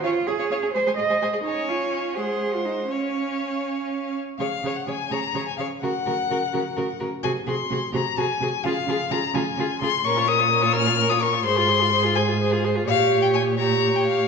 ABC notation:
X:1
M:6/8
L:1/16
Q:3/8=85
K:Db
V:1 name="Violin"
f z d f f d a a e a a e | a6 g6 | f8- f2 z2 | f3 g a2 b3 a f2 |
g8- g2 z2 | a2 c'4 b2 a4 | f4 b2 a4 c'2 | [K:Fm] d'2 e'4 f'3 e' d'2 |
c'6 a4 z2 | f3 g a2 b3 g f2 |]
V:2 name="Violin"
d z A d d A c c A c c A | d6 c6 | d8- d2 z2 | d2 d2 d2 d2 d2 d2 |
B2 B2 B2 B2 B2 B2 | A2 A2 A2 A2 A2 A2 | A2 A2 A2 A2 A2 A2 | [K:Fm] B d B d B d B d B d B d |
c A c A c A c A c A c A | d6 d6 |]
V:3 name="Viola"
D z D D D D A, A, A, A, A, A, | D6 A,6 | D8- D2 z2 | A2 A2 A2 A2 A2 A2 |
G2 G2 G2 G2 G2 G2 | G2 G2 G2 G2 G2 G2 | F2 F2 F2 F2 F2 F2 | [K:Fm] D F D F D F D F D F D F |
A F A F A F A F A F A F | G6 G6 |]
V:4 name="Cello" clef=bass
F2 A4 c2 e4 | E2 F4 A3 F E2 | D8- D2 z2 | D,2 D,2 D,2 D,2 D,2 D,2 |
D,2 D,2 D,2 D,2 D,2 D,2 | C,2 C,2 C,2 C,2 C,2 C,2 | D,2 D,2 D,2 D,2 D,2 D,2 | [K:Fm] B,,12 |
A,,12 | B,,12 |]